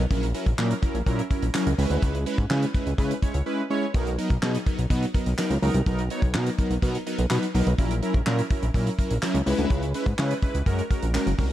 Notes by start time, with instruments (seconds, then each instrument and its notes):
0.10 analog synth bass A#1, analog polysynth F#3 C#4 E4 A#4, kick, closed hi-hat
0.23 closed hi-hat
0.34 analog polysynth F#3 C#4 E4 A#4, closed hi-hat
0.46 analog synth bass A#1, kick, closed hi-hat
0.58 analog synth bass A#2, analog polysynth F#3 C#4 E4 A#4, snare, clap
0.71 closed hi-hat
0.82 analog polysynth F#3 C#4 E4 A#4, kick, closed hi-hat
0.94 analog synth bass A#1, closed hi-hat
1.06 analog synth bass A#2, analog polysynth F#3 C#4 E4 A#4, kick, closed hi-hat
1.19 closed hi-hat
1.30 analog polysynth F#3 C#4 E4 A#4, kick, closed hi-hat
1.42 analog synth bass A#1, closed hi-hat
1.54 analog polysynth F#3 C#4 E4 A#4, snare, clap, closed hi-hat
1.67 analog synth bass C#2, closed hi-hat
1.78 analog synth bass C#2, analog polysynth G#3 C#4 E4 B4, open hi-hat
1.90 analog synth bass D2, closed hi-hat
2.02 analog synth bass C#2, kick, closed hi-hat
2.15 closed hi-hat
2.26 analog polysynth G#3 C#4 E4 B4, closed hi-hat
2.38 analog synth bass G#2, kick, closed hi-hat
2.50 analog synth bass C#3, analog polysynth G#3 C#4 E4 B4, snare, clap
2.63 closed hi-hat
2.74 analog polysynth G#3 C#4 E4 B4, kick, closed hi-hat
2.86 analog synth bass C#2, closed hi-hat
2.98 analog synth bass C#3, analog polysynth G#3 C#4 E4 B4, kick, closed hi-hat
3.11 closed hi-hat
3.22 analog polysynth G#3 C#4 E4 C#5, kick, closed hi-hat
3.34 analog synth bass C#2, closed hi-hat
3.46 analog polysynth G#3 C#4 E4 B4
3.70 analog polysynth G#3 C#4 E4 C#5
3.94 analog synth bass B1, analog polysynth F#3 B3 D#4 A#4, kick, closed hi-hat
4.07 closed hi-hat
4.18 analog polysynth F#3 B3 D#4 A#4, closed hi-hat
4.30 analog synth bass B1, kick, closed hi-hat
4.42 analog synth bass B2, analog polysynth F#3 B3 D#4 G#4, snare, clap
4.55 closed hi-hat
4.66 analog polysynth F#3 B3 D#4 A#4, kick, closed hi-hat
4.79 analog synth bass B1, closed hi-hat
4.90 analog synth bass B2, analog polysynth F#3 B3 D#4 F#4, kick, closed hi-hat
5.03 closed hi-hat
5.14 analog polysynth F#3 B3 D#4 A#4, kick, closed hi-hat
5.26 analog synth bass B1, closed hi-hat
5.38 analog polysynth F#3 B3 D#4 A#4, snare, clap, closed hi-hat
5.50 analog synth bass C#2, closed hi-hat
5.62 analog synth bass C#2, analog polysynth F#3 B3 D#4 A#4, open hi-hat
5.74 analog synth bass C2, closed hi-hat
5.86 analog synth bass B1, analog polysynth F#3 B3 D#4 A#4, kick, closed hi-hat
5.99 closed hi-hat
6.10 analog polysynth F#3 B3 D#4 C#5, closed hi-hat
6.22 analog synth bass B1, kick, closed hi-hat
6.34 analog synth bass B2, analog polysynth F#3 B3 D#4 A#4, snare, clap
6.47 closed hi-hat
6.58 analog polysynth F#3 B3 D#4 A#4, kick, closed hi-hat
6.70 analog synth bass B1, closed hi-hat
6.82 analog synth bass B2, analog polysynth F#3 B3 D#4 A#4, kick, closed hi-hat
6.95 closed hi-hat
7.06 analog polysynth F#3 B3 D#4 A#4, closed hi-hat
7.19 analog synth bass B1, closed hi-hat
7.30 analog synth bass B2, analog polysynth F#3 B3 D#4 B4, snare, clap, closed hi-hat
7.43 closed hi-hat
7.54 analog synth bass B1, analog polysynth F#3 B3 D#4 A#4, open hi-hat
7.67 analog synth bass B1, closed hi-hat
7.78 analog synth bass A#1, analog polysynth F#3 C#4 E4 A#4, kick, closed hi-hat
7.91 closed hi-hat
8.02 analog polysynth F#3 C#4 E4 A#4, closed hi-hat
8.14 analog synth bass A#1, kick, closed hi-hat
8.26 analog synth bass A#2, analog polysynth F#3 C#4 E4 A#4, snare, clap
8.39 closed hi-hat
8.50 analog polysynth F#3 C#4 E4 A#4, kick, closed hi-hat
8.63 analog synth bass A#1, closed hi-hat
8.74 analog synth bass A#2, analog polysynth F#3 C#4 E4 A#4, kick, closed hi-hat
8.87 closed hi-hat
8.99 analog polysynth F#3 C#4 E4 A#4, kick, closed hi-hat
9.11 analog synth bass A#1, closed hi-hat
9.22 analog polysynth F#3 C#4 E4 A#4, snare, clap, closed hi-hat
9.34 analog synth bass C#2, closed hi-hat
9.46 analog synth bass C#2, analog polysynth G#3 C#4 E4 B4, open hi-hat
9.58 analog synth bass D2, closed hi-hat
9.70 analog synth bass C#2, kick, closed hi-hat
9.83 closed hi-hat
9.94 analog polysynth G#3 C#4 E4 B4, closed hi-hat
10.06 analog synth bass G#2, kick, closed hi-hat
10.18 analog synth bass C#3, analog polysynth G#3 C#4 E4 B4, snare, clap
10.31 closed hi-hat
10.42 analog polysynth G#3 C#4 E4 B4, kick, closed hi-hat
10.55 analog synth bass C#2, closed hi-hat
10.66 analog synth bass F#2, analog polysynth G#3 C#4 F#4 A#4, kick, closed hi-hat
10.79 closed hi-hat
10.90 analog polysynth G#3 C#4 F#4 A#4, kick, closed hi-hat
11.03 analog synth bass A#1, closed hi-hat
11.14 analog polysynth G#3 C#4 F#4 A#4, snare, clap, closed hi-hat
11.27 analog synth bass F#1, closed hi-hat
11.38 analog synth bass C2, analog polysynth G#3 C#4 F#4 A#4, kick, open hi-hat